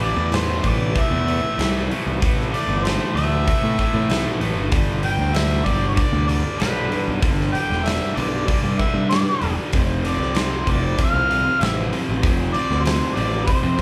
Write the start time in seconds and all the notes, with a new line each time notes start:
Already playing: A1
0.00 A2 E3 A3 D5, open hi-hat
0.16 E2
0.31 A2 E3 A3 C5, snare, open hi-hat
0.62 A1 A2 E3 A3, kick, open hi-hat
0.68 D5
0.94 A2 E3 A3, kick, open hi-hat
1.00 E5
1.11 E2
1.26 A2 E3 A3, open hi-hat
1.57 C2 A2 E3 A3, snare, open hi-hat
1.90 A2 E3 A3, open hi-hat
2.07 C2
2.20 A1 A2 E3 A3, kick, open hi-hat
2.40 snare
2.52 A2 E3 A3 D5, open hi-hat
2.68 G1
2.83 A2 E3 A3 C5, snare, open hi-hat
3.15 D2 A2 E3 A3 E5, open hi-hat
3.46 A2 E3 A3, kick, open hi-hat
3.63 A2
3.78 A2 E3 A3, kick, open hi-hat
3.94 A2
4.09 C2 A2 E3 A3, snare, open hi-hat
4.25 B1
4.40 A1 A2 E3 A3, open hi-hat
4.56 G1
4.71 G1 G2 D3 G3, kick, open hi-hat
5.03 G2 D3 G3 G5, open hi-hat
5.18 D2
5.33 G2 D3 G3 E5, snare, open hi-hat
5.64 G1 G2 D3 G3 D5, kick, open hi-hat
5.89 C#5
5.95 G2 D3 G3 D5, kick, open hi-hat
6.12 D2
6.27 G2 D3 G3 D5, open hi-hat
6.57 B1 G2 D3 G3 B4, open hi-hat
6.62 snare
6.89 G2 D3 G3, open hi-hat
7.08 B1
7.21 G1 G2 D3 G3, kick, open hi-hat
7.41 snare
7.52 G2 D3 G3 G5, open hi-hat
7.70 E1, snare
7.84 G2 D3 G3 E5, snare, open hi-hat
8.14 B1 G2 D3 G3 D5, open hi-hat
8.46 G2 D3 G3 D5, kick, open hi-hat
8.64 G2
8.79 G2 D3 G3 E5, kick, open hi-hat
8.94 G2
9.09 G2 D3 G3 D5, snare, open hi-hat
9.41 E1 G2 D3 G3, open hi-hat
9.72 F1 F2 C3 F3, kick, open hi-hat
10.04 F2 C3 F3 D5, open hi-hat
10.19 C2, snare
10.35 F2 C3 F3 C5, snare, open hi-hat
10.67 F1 F2 C3 F3 D5, kick, open hi-hat
10.98 F2 C3 F3, kick, open hi-hat
11.03 F5
11.14 C2
11.29 F2 C3 F3, open hi-hat
11.59 A1 F2 C3 F3 E5, snare, open hi-hat
11.92 F2 C3 F3, open hi-hat
12.09 A1
12.22 F1 F2 C3 F3, kick, open hi-hat
12.53 F2 C3 F3 D5, open hi-hat
12.71 D2, snare
12.83 F2 C3 F3 C5, open hi-hat
12.87 snare
13.14 A1 F2 C3 F3 D5, open hi-hat
13.45 F2 C3 F3 C5, kick, open hi-hat
13.63 F2
13.77 F2 C3 F3, kick